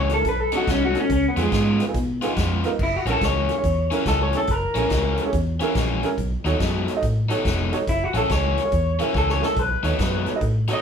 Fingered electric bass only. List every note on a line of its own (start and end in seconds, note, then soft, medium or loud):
0.00 0.25 C#2 medium
0.25 0.52 B1 medium
0.68 0.95 C2 medium
1.10 1.27 C#2 loud
1.37 1.47 F2 medium
1.52 1.79 G#2 medium
1.94 2.22 B2 loud
2.37 2.64 F2 medium
2.79 2.97 F#1 medium
3.05 3.15 A#1 medium
3.21 3.49 C#2 medium
3.64 3.91 E2 medium
4.06 4.33 C#2 medium
4.48 4.66 F#1 medium
4.75 4.85 A#1 medium
4.90 5.17 C#2 medium
5.33 5.60 E2 medium
5.75 6.03 A#1 medium
6.18 6.35 B1 medium
6.45 6.54 D#2 medium
6.60 6.87 F#2 medium
7.02 7.30 A2 medium
7.45 7.72 F1 medium
7.87 8.05 F#1 medium
8.14 8.24 A#1 medium
8.29 8.56 C#2 medium
8.72 8.99 E2 medium
9.14 9.41 C#2 medium
9.57 9.74 B1 medium
9.83 9.93 D#2 medium
9.99 10.26 F#2 medium
10.41 10.68 A2 medium